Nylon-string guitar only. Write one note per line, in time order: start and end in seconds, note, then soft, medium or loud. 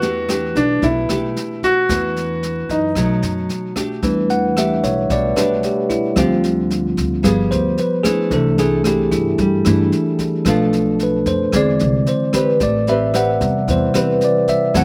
0.00 0.80 E3 medium
0.00 0.25 A3 medium
0.00 0.25 D4 medium
0.00 0.25 G4 medium
0.29 1.05 A3 medium
0.29 1.05 D4 medium
0.29 1.05 G4 medium
0.82 1.87 B2 soft
1.10 1.85 A3 medium
1.10 1.86 D4 medium
1.10 1.86 G4 medium
1.89 2.94 E3 medium
1.89 2.92 A3 medium
1.89 2.92 D4 medium
2.96 4.01 B2 medium
2.96 3.72 F#3 medium
2.96 3.73 A3 medium
2.96 3.73 D#4 medium
3.76 4.26 A3 medium
3.76 4.26 D4 medium
3.76 4.26 G4 medium
4.03 5.07 E3 medium
4.57 5.33 A3 soft
4.57 5.33 D4 medium
4.57 5.33 G4 medium
5.10 6.15 B2 medium
5.36 6.13 A3 medium
5.36 6.13 D4 medium
5.36 6.13 G4 medium
6.17 7.22 D3 medium
6.17 7.20 C4 medium
6.17 7.20 F4 medium
6.17 7.20 G4 medium
7.23 8.04 G3 medium
7.23 7.77 B3 soft
7.23 7.77 F4 soft
7.23 7.78 G#4 medium
8.05 8.57 A3 medium
8.05 8.58 D4 medium
8.05 8.58 E4 medium
8.32 9.36 C3 medium
8.58 8.81 A3 medium
8.58 8.81 D4 medium
8.58 8.81 E4 medium
8.86 9.39 A3 medium
8.86 9.39 D4 medium
8.86 9.39 E4 medium
9.39 10.44 G3 medium
9.66 10.42 A3 medium
9.66 10.42 D4 medium
9.66 10.42 E4 medium
10.47 11.51 B2 medium
10.47 11.19 A3 medium
10.47 11.19 D4 medium
10.47 11.19 F4 medium
11.52 12.57 E3 medium
11.52 12.06 D4 medium
11.52 12.07 G#4 soft
11.52 12.07 C5 medium
12.33 12.83 C4 medium
12.33 12.83 G4 medium
12.33 12.83 B4 medium
12.60 13.65 A3 medium
12.88 13.10 C4 medium
12.88 13.10 G4 medium
12.88 13.11 B4 medium
13.14 13.90 C4 medium
13.14 13.90 G4 medium
13.14 13.91 B4 medium
13.68 14.73 E3 medium
13.94 14.71 C4 medium
13.94 14.71 G4 medium
13.94 14.71 B4 medium
14.74 14.84 F#3 medium
14.74 14.84 C4 medium
14.74 14.84 E4 medium
14.74 14.84 A4 medium